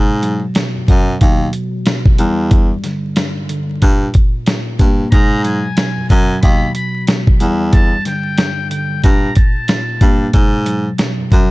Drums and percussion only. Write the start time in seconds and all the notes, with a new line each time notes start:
0.23 closed hi-hat
0.55 snare, closed hi-hat
0.88 kick, closed hi-hat
1.21 kick, closed hi-hat
1.53 closed hi-hat
1.86 snare, closed hi-hat
2.06 kick
2.18 closed hi-hat
2.51 kick, closed hi-hat
2.84 snare, closed hi-hat
3.16 snare, closed hi-hat
3.49 closed hi-hat
3.82 kick, closed hi-hat
4.14 kick, closed hi-hat
4.46 snare, closed hi-hat
4.79 kick, closed hi-hat
5.12 kick, closed hi-hat
5.45 closed hi-hat
5.77 snare, closed hi-hat
6.10 kick, closed hi-hat
6.43 kick, closed hi-hat
6.75 closed hi-hat
7.07 snare, closed hi-hat
7.27 kick
7.40 closed hi-hat
7.73 kick, closed hi-hat
8.05 snare, closed hi-hat
8.38 snare, closed hi-hat
8.71 closed hi-hat
9.04 kick, closed hi-hat
9.35 kick, closed hi-hat
9.68 snare, closed hi-hat
10.01 kick, closed hi-hat
10.33 kick, closed hi-hat
10.66 closed hi-hat
10.98 snare, closed hi-hat
11.32 kick, closed hi-hat